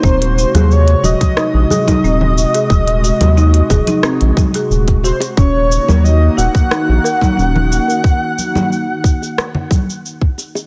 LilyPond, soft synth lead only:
\new Staff \with { instrumentName = "Soft synth lead" } { \time 4/4 \key ees \dorian \tempo 4 = 90 c''4 des''8 ees''8 ees''2~ | ees''2. r8 c''8 | des''4 ees''8 ges''2~ ges''8~ | ges''2. r4 | }